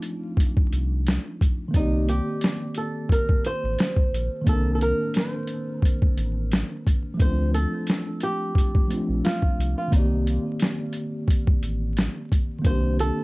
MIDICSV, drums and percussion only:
0, 0, Header, 1, 2, 480
1, 0, Start_track
1, 0, Tempo, 681818
1, 1224, Time_signature, 4, 2, 24, 8
1, 9320, End_track
2, 0, Start_track
2, 0, Title_t, "Drums"
2, 17, Note_on_c, 9, 42, 60
2, 87, Note_off_c, 9, 42, 0
2, 261, Note_on_c, 9, 36, 81
2, 282, Note_on_c, 9, 42, 76
2, 331, Note_off_c, 9, 36, 0
2, 352, Note_off_c, 9, 42, 0
2, 400, Note_on_c, 9, 36, 87
2, 470, Note_off_c, 9, 36, 0
2, 510, Note_on_c, 9, 42, 54
2, 581, Note_off_c, 9, 42, 0
2, 751, Note_on_c, 9, 42, 74
2, 763, Note_on_c, 9, 38, 101
2, 821, Note_off_c, 9, 42, 0
2, 833, Note_off_c, 9, 38, 0
2, 994, Note_on_c, 9, 36, 84
2, 1001, Note_on_c, 9, 42, 62
2, 1065, Note_off_c, 9, 36, 0
2, 1071, Note_off_c, 9, 42, 0
2, 1225, Note_on_c, 9, 36, 106
2, 1227, Note_on_c, 9, 42, 78
2, 1296, Note_off_c, 9, 36, 0
2, 1297, Note_off_c, 9, 42, 0
2, 1468, Note_on_c, 9, 42, 61
2, 1539, Note_off_c, 9, 42, 0
2, 1698, Note_on_c, 9, 42, 78
2, 1718, Note_on_c, 9, 38, 113
2, 1768, Note_off_c, 9, 42, 0
2, 1789, Note_off_c, 9, 38, 0
2, 1932, Note_on_c, 9, 42, 57
2, 2003, Note_off_c, 9, 42, 0
2, 2178, Note_on_c, 9, 36, 82
2, 2196, Note_on_c, 9, 42, 72
2, 2249, Note_off_c, 9, 36, 0
2, 2267, Note_off_c, 9, 42, 0
2, 2316, Note_on_c, 9, 36, 87
2, 2387, Note_off_c, 9, 36, 0
2, 2426, Note_on_c, 9, 42, 56
2, 2496, Note_off_c, 9, 42, 0
2, 2665, Note_on_c, 9, 42, 74
2, 2678, Note_on_c, 9, 38, 104
2, 2736, Note_off_c, 9, 42, 0
2, 2748, Note_off_c, 9, 38, 0
2, 2792, Note_on_c, 9, 36, 80
2, 2862, Note_off_c, 9, 36, 0
2, 2917, Note_on_c, 9, 42, 63
2, 2987, Note_off_c, 9, 42, 0
2, 3144, Note_on_c, 9, 36, 98
2, 3146, Note_on_c, 9, 42, 78
2, 3215, Note_off_c, 9, 36, 0
2, 3216, Note_off_c, 9, 42, 0
2, 3388, Note_on_c, 9, 42, 65
2, 3458, Note_off_c, 9, 42, 0
2, 3619, Note_on_c, 9, 42, 81
2, 3639, Note_on_c, 9, 38, 110
2, 3689, Note_off_c, 9, 42, 0
2, 3710, Note_off_c, 9, 38, 0
2, 3854, Note_on_c, 9, 42, 60
2, 3924, Note_off_c, 9, 42, 0
2, 4100, Note_on_c, 9, 36, 84
2, 4120, Note_on_c, 9, 42, 72
2, 4170, Note_off_c, 9, 36, 0
2, 4190, Note_off_c, 9, 42, 0
2, 4238, Note_on_c, 9, 36, 88
2, 4308, Note_off_c, 9, 36, 0
2, 4347, Note_on_c, 9, 42, 57
2, 4418, Note_off_c, 9, 42, 0
2, 4587, Note_on_c, 9, 42, 75
2, 4599, Note_on_c, 9, 38, 99
2, 4657, Note_off_c, 9, 42, 0
2, 4670, Note_off_c, 9, 38, 0
2, 4834, Note_on_c, 9, 36, 86
2, 4840, Note_on_c, 9, 42, 67
2, 4904, Note_off_c, 9, 36, 0
2, 4910, Note_off_c, 9, 42, 0
2, 5066, Note_on_c, 9, 36, 100
2, 5068, Note_on_c, 9, 42, 77
2, 5136, Note_off_c, 9, 36, 0
2, 5139, Note_off_c, 9, 42, 0
2, 5310, Note_on_c, 9, 42, 63
2, 5381, Note_off_c, 9, 42, 0
2, 5539, Note_on_c, 9, 42, 77
2, 5559, Note_on_c, 9, 38, 114
2, 5609, Note_off_c, 9, 42, 0
2, 5629, Note_off_c, 9, 38, 0
2, 5775, Note_on_c, 9, 42, 59
2, 5846, Note_off_c, 9, 42, 0
2, 6021, Note_on_c, 9, 36, 81
2, 6041, Note_on_c, 9, 42, 71
2, 6091, Note_off_c, 9, 36, 0
2, 6112, Note_off_c, 9, 42, 0
2, 6159, Note_on_c, 9, 36, 90
2, 6230, Note_off_c, 9, 36, 0
2, 6269, Note_on_c, 9, 42, 56
2, 6340, Note_off_c, 9, 42, 0
2, 6511, Note_on_c, 9, 42, 73
2, 6523, Note_on_c, 9, 38, 103
2, 6581, Note_off_c, 9, 42, 0
2, 6593, Note_off_c, 9, 38, 0
2, 6634, Note_on_c, 9, 36, 86
2, 6704, Note_off_c, 9, 36, 0
2, 6761, Note_on_c, 9, 42, 63
2, 6831, Note_off_c, 9, 42, 0
2, 6986, Note_on_c, 9, 36, 103
2, 6990, Note_on_c, 9, 42, 76
2, 7056, Note_off_c, 9, 36, 0
2, 7060, Note_off_c, 9, 42, 0
2, 7232, Note_on_c, 9, 42, 60
2, 7302, Note_off_c, 9, 42, 0
2, 7460, Note_on_c, 9, 42, 77
2, 7480, Note_on_c, 9, 38, 117
2, 7530, Note_off_c, 9, 42, 0
2, 7550, Note_off_c, 9, 38, 0
2, 7693, Note_on_c, 9, 42, 59
2, 7763, Note_off_c, 9, 42, 0
2, 7939, Note_on_c, 9, 36, 88
2, 7958, Note_on_c, 9, 42, 74
2, 8009, Note_off_c, 9, 36, 0
2, 8028, Note_off_c, 9, 42, 0
2, 8077, Note_on_c, 9, 36, 84
2, 8147, Note_off_c, 9, 36, 0
2, 8185, Note_on_c, 9, 42, 57
2, 8255, Note_off_c, 9, 42, 0
2, 8425, Note_on_c, 9, 42, 74
2, 8438, Note_on_c, 9, 38, 97
2, 8496, Note_off_c, 9, 42, 0
2, 8508, Note_off_c, 9, 38, 0
2, 8671, Note_on_c, 9, 36, 86
2, 8677, Note_on_c, 9, 42, 66
2, 8742, Note_off_c, 9, 36, 0
2, 8747, Note_off_c, 9, 42, 0
2, 8902, Note_on_c, 9, 36, 106
2, 8902, Note_on_c, 9, 42, 83
2, 8972, Note_off_c, 9, 36, 0
2, 8973, Note_off_c, 9, 42, 0
2, 9147, Note_on_c, 9, 42, 64
2, 9217, Note_off_c, 9, 42, 0
2, 9320, End_track
0, 0, End_of_file